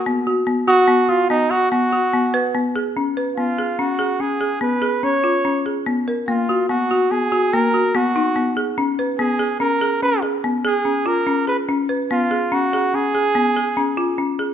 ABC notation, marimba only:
X:1
M:7/4
L:1/8
Q:1/4=144
K:C#mix
V:1 name="Marimba"
B, F B, F B, F B, F B, F B, B B, G | C B B, G C G C G B, G C E C G | B, A A, F B, F B, F A, F B, D B, G | C B B, G C G C G B, G C E C G |
C B B, G C G C G B, G C E C G |]